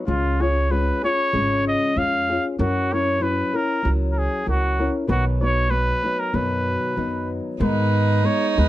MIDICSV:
0, 0, Header, 1, 5, 480
1, 0, Start_track
1, 0, Key_signature, 5, "major"
1, 0, Tempo, 627615
1, 60, Time_signature, 4, 2, 24, 8
1, 6643, End_track
2, 0, Start_track
2, 0, Title_t, "Trumpet"
2, 0, Program_c, 0, 56
2, 59, Note_on_c, 0, 65, 79
2, 315, Note_on_c, 0, 73, 70
2, 326, Note_off_c, 0, 65, 0
2, 544, Note_on_c, 0, 71, 73
2, 555, Note_off_c, 0, 73, 0
2, 794, Note_off_c, 0, 71, 0
2, 799, Note_on_c, 0, 73, 93
2, 1250, Note_off_c, 0, 73, 0
2, 1283, Note_on_c, 0, 75, 86
2, 1514, Note_on_c, 0, 77, 89
2, 1525, Note_off_c, 0, 75, 0
2, 1877, Note_off_c, 0, 77, 0
2, 1986, Note_on_c, 0, 66, 78
2, 2240, Note_on_c, 0, 73, 90
2, 2252, Note_off_c, 0, 66, 0
2, 2464, Note_on_c, 0, 71, 76
2, 2476, Note_off_c, 0, 73, 0
2, 2721, Note_on_c, 0, 70, 89
2, 2733, Note_off_c, 0, 71, 0
2, 2979, Note_off_c, 0, 70, 0
2, 3150, Note_on_c, 0, 70, 52
2, 3199, Note_on_c, 0, 68, 84
2, 3210, Note_off_c, 0, 70, 0
2, 3419, Note_off_c, 0, 68, 0
2, 3438, Note_on_c, 0, 66, 78
2, 3769, Note_off_c, 0, 66, 0
2, 3902, Note_on_c, 0, 66, 80
2, 4016, Note_off_c, 0, 66, 0
2, 4152, Note_on_c, 0, 73, 84
2, 4363, Note_on_c, 0, 71, 80
2, 4374, Note_off_c, 0, 73, 0
2, 4738, Note_on_c, 0, 70, 68
2, 4749, Note_off_c, 0, 71, 0
2, 4855, Note_on_c, 0, 71, 68
2, 4867, Note_off_c, 0, 70, 0
2, 5599, Note_off_c, 0, 71, 0
2, 5828, Note_on_c, 0, 71, 69
2, 6313, Note_on_c, 0, 73, 77
2, 6324, Note_off_c, 0, 71, 0
2, 6496, Note_off_c, 0, 73, 0
2, 6496, Note_on_c, 0, 73, 53
2, 6570, Note_on_c, 0, 71, 82
2, 6581, Note_off_c, 0, 73, 0
2, 6643, Note_off_c, 0, 71, 0
2, 6643, End_track
3, 0, Start_track
3, 0, Title_t, "Violin"
3, 0, Program_c, 1, 40
3, 5821, Note_on_c, 1, 63, 90
3, 6643, Note_off_c, 1, 63, 0
3, 6643, End_track
4, 0, Start_track
4, 0, Title_t, "Nylon-string guitar"
4, 0, Program_c, 2, 24
4, 49, Note_on_c, 2, 49, 47
4, 51, Note_on_c, 2, 61, 54
4, 53, Note_on_c, 2, 56, 47
4, 55, Note_on_c, 2, 65, 55
4, 59, Note_on_c, 2, 68, 64
4, 296, Note_off_c, 2, 68, 0
4, 305, Note_off_c, 2, 65, 0
4, 305, Note_on_c, 2, 68, 42
4, 308, Note_off_c, 2, 61, 0
4, 313, Note_off_c, 2, 49, 0
4, 314, Note_on_c, 2, 65, 35
4, 315, Note_off_c, 2, 56, 0
4, 317, Note_on_c, 2, 61, 34
4, 528, Note_off_c, 2, 61, 0
4, 531, Note_off_c, 2, 65, 0
4, 531, Note_on_c, 2, 56, 51
4, 534, Note_off_c, 2, 68, 0
4, 537, Note_on_c, 2, 61, 46
4, 540, Note_on_c, 2, 65, 55
4, 545, Note_on_c, 2, 68, 49
4, 776, Note_off_c, 2, 68, 0
4, 785, Note_off_c, 2, 65, 0
4, 785, Note_on_c, 2, 68, 37
4, 791, Note_off_c, 2, 61, 0
4, 794, Note_on_c, 2, 65, 29
4, 795, Note_off_c, 2, 56, 0
4, 800, Note_on_c, 2, 61, 25
4, 1012, Note_off_c, 2, 61, 0
4, 1014, Note_off_c, 2, 65, 0
4, 1015, Note_off_c, 2, 68, 0
4, 1016, Note_on_c, 2, 49, 52
4, 1017, Note_on_c, 2, 56, 55
4, 1021, Note_on_c, 2, 61, 62
4, 1023, Note_on_c, 2, 65, 47
4, 1023, Note_on_c, 2, 68, 61
4, 1487, Note_off_c, 2, 56, 0
4, 1496, Note_on_c, 2, 56, 46
4, 1498, Note_off_c, 2, 65, 0
4, 1499, Note_off_c, 2, 61, 0
4, 1500, Note_off_c, 2, 49, 0
4, 1502, Note_on_c, 2, 61, 50
4, 1503, Note_off_c, 2, 68, 0
4, 1507, Note_on_c, 2, 65, 48
4, 1511, Note_on_c, 2, 68, 48
4, 1746, Note_off_c, 2, 68, 0
4, 1756, Note_off_c, 2, 65, 0
4, 1756, Note_on_c, 2, 68, 43
4, 1758, Note_off_c, 2, 56, 0
4, 1761, Note_off_c, 2, 61, 0
4, 1766, Note_on_c, 2, 65, 40
4, 1770, Note_on_c, 2, 61, 37
4, 1969, Note_off_c, 2, 61, 0
4, 1976, Note_on_c, 2, 54, 46
4, 1978, Note_on_c, 2, 61, 52
4, 1980, Note_off_c, 2, 68, 0
4, 1982, Note_off_c, 2, 65, 0
4, 1985, Note_on_c, 2, 64, 64
4, 1987, Note_on_c, 2, 70, 59
4, 2223, Note_off_c, 2, 70, 0
4, 2230, Note_off_c, 2, 64, 0
4, 2232, Note_on_c, 2, 70, 45
4, 2236, Note_off_c, 2, 61, 0
4, 2237, Note_off_c, 2, 54, 0
4, 2239, Note_on_c, 2, 64, 38
4, 2245, Note_on_c, 2, 61, 39
4, 2444, Note_off_c, 2, 61, 0
4, 2446, Note_off_c, 2, 64, 0
4, 2447, Note_on_c, 2, 54, 50
4, 2454, Note_on_c, 2, 61, 54
4, 2455, Note_on_c, 2, 64, 61
4, 2458, Note_off_c, 2, 70, 0
4, 2702, Note_off_c, 2, 64, 0
4, 2703, Note_on_c, 2, 70, 32
4, 2707, Note_off_c, 2, 61, 0
4, 2711, Note_on_c, 2, 64, 32
4, 2713, Note_off_c, 2, 54, 0
4, 2716, Note_on_c, 2, 61, 32
4, 2923, Note_off_c, 2, 61, 0
4, 2924, Note_off_c, 2, 64, 0
4, 2927, Note_off_c, 2, 70, 0
4, 2929, Note_on_c, 2, 54, 51
4, 2932, Note_on_c, 2, 61, 54
4, 2933, Note_on_c, 2, 64, 57
4, 2937, Note_on_c, 2, 70, 53
4, 3402, Note_off_c, 2, 54, 0
4, 3404, Note_off_c, 2, 61, 0
4, 3405, Note_on_c, 2, 54, 44
4, 3407, Note_off_c, 2, 64, 0
4, 3411, Note_off_c, 2, 70, 0
4, 3414, Note_on_c, 2, 61, 45
4, 3417, Note_on_c, 2, 64, 49
4, 3420, Note_on_c, 2, 70, 47
4, 3658, Note_off_c, 2, 70, 0
4, 3662, Note_off_c, 2, 64, 0
4, 3667, Note_off_c, 2, 61, 0
4, 3667, Note_on_c, 2, 70, 45
4, 3668, Note_off_c, 2, 54, 0
4, 3671, Note_on_c, 2, 64, 39
4, 3676, Note_on_c, 2, 61, 36
4, 3880, Note_on_c, 2, 47, 55
4, 3881, Note_on_c, 2, 51, 52
4, 3885, Note_off_c, 2, 64, 0
4, 3887, Note_off_c, 2, 61, 0
4, 3887, Note_off_c, 2, 70, 0
4, 3888, Note_on_c, 2, 54, 53
4, 3888, Note_on_c, 2, 63, 47
4, 3890, Note_on_c, 2, 59, 53
4, 3890, Note_on_c, 2, 71, 69
4, 4130, Note_off_c, 2, 71, 0
4, 4136, Note_off_c, 2, 63, 0
4, 4140, Note_off_c, 2, 59, 0
4, 4140, Note_on_c, 2, 71, 44
4, 4143, Note_off_c, 2, 54, 0
4, 4144, Note_off_c, 2, 47, 0
4, 4145, Note_off_c, 2, 51, 0
4, 4146, Note_on_c, 2, 63, 40
4, 4149, Note_on_c, 2, 59, 36
4, 4152, Note_on_c, 2, 54, 34
4, 4351, Note_off_c, 2, 54, 0
4, 4357, Note_off_c, 2, 59, 0
4, 4360, Note_off_c, 2, 63, 0
4, 4360, Note_on_c, 2, 54, 42
4, 4363, Note_off_c, 2, 71, 0
4, 4366, Note_on_c, 2, 59, 46
4, 4369, Note_on_c, 2, 63, 46
4, 4372, Note_on_c, 2, 71, 49
4, 4606, Note_off_c, 2, 71, 0
4, 4610, Note_off_c, 2, 63, 0
4, 4614, Note_off_c, 2, 59, 0
4, 4616, Note_on_c, 2, 71, 33
4, 4618, Note_off_c, 2, 54, 0
4, 4619, Note_on_c, 2, 63, 36
4, 4623, Note_on_c, 2, 59, 29
4, 4627, Note_on_c, 2, 54, 30
4, 4836, Note_off_c, 2, 54, 0
4, 4837, Note_off_c, 2, 59, 0
4, 4837, Note_off_c, 2, 63, 0
4, 4841, Note_off_c, 2, 71, 0
4, 4841, Note_on_c, 2, 47, 54
4, 4845, Note_on_c, 2, 51, 52
4, 4845, Note_on_c, 2, 54, 55
4, 4846, Note_on_c, 2, 59, 55
4, 4846, Note_on_c, 2, 63, 67
4, 4850, Note_on_c, 2, 71, 56
4, 5317, Note_off_c, 2, 54, 0
4, 5326, Note_on_c, 2, 54, 47
4, 5330, Note_off_c, 2, 59, 0
4, 5331, Note_off_c, 2, 47, 0
4, 5331, Note_off_c, 2, 63, 0
4, 5333, Note_on_c, 2, 59, 46
4, 5334, Note_on_c, 2, 63, 49
4, 5336, Note_off_c, 2, 71, 0
4, 5339, Note_on_c, 2, 71, 44
4, 5808, Note_off_c, 2, 51, 0
4, 5810, Note_off_c, 2, 54, 0
4, 5811, Note_on_c, 2, 44, 58
4, 5811, Note_on_c, 2, 51, 58
4, 5813, Note_on_c, 2, 56, 45
4, 5814, Note_off_c, 2, 59, 0
4, 5814, Note_off_c, 2, 63, 0
4, 5814, Note_off_c, 2, 71, 0
4, 5817, Note_on_c, 2, 59, 52
4, 5817, Note_on_c, 2, 63, 53
4, 5817, Note_on_c, 2, 68, 59
4, 6293, Note_off_c, 2, 56, 0
4, 6294, Note_off_c, 2, 59, 0
4, 6296, Note_on_c, 2, 56, 53
4, 6297, Note_off_c, 2, 63, 0
4, 6298, Note_off_c, 2, 44, 0
4, 6298, Note_off_c, 2, 51, 0
4, 6303, Note_on_c, 2, 59, 54
4, 6307, Note_on_c, 2, 63, 53
4, 6308, Note_off_c, 2, 68, 0
4, 6311, Note_on_c, 2, 68, 58
4, 6549, Note_off_c, 2, 68, 0
4, 6553, Note_off_c, 2, 63, 0
4, 6557, Note_off_c, 2, 56, 0
4, 6557, Note_off_c, 2, 59, 0
4, 6558, Note_on_c, 2, 68, 37
4, 6563, Note_on_c, 2, 63, 42
4, 6566, Note_on_c, 2, 59, 39
4, 6569, Note_on_c, 2, 56, 39
4, 6643, Note_off_c, 2, 56, 0
4, 6643, Note_off_c, 2, 59, 0
4, 6643, Note_off_c, 2, 63, 0
4, 6643, Note_off_c, 2, 68, 0
4, 6643, End_track
5, 0, Start_track
5, 0, Title_t, "Upright bass"
5, 0, Program_c, 3, 32
5, 61, Note_on_c, 3, 37, 74
5, 686, Note_off_c, 3, 37, 0
5, 1022, Note_on_c, 3, 32, 66
5, 1334, Note_off_c, 3, 32, 0
5, 1501, Note_on_c, 3, 41, 63
5, 1813, Note_off_c, 3, 41, 0
5, 1983, Note_on_c, 3, 42, 85
5, 2606, Note_off_c, 3, 42, 0
5, 2944, Note_on_c, 3, 37, 75
5, 3253, Note_off_c, 3, 37, 0
5, 3418, Note_on_c, 3, 37, 58
5, 3728, Note_off_c, 3, 37, 0
5, 3893, Note_on_c, 3, 35, 81
5, 4516, Note_off_c, 3, 35, 0
5, 4847, Note_on_c, 3, 42, 69
5, 5164, Note_off_c, 3, 42, 0
5, 5331, Note_on_c, 3, 42, 56
5, 5648, Note_off_c, 3, 42, 0
5, 5816, Note_on_c, 3, 44, 82
5, 6298, Note_off_c, 3, 44, 0
5, 6561, Note_on_c, 3, 39, 85
5, 6643, Note_off_c, 3, 39, 0
5, 6643, End_track
0, 0, End_of_file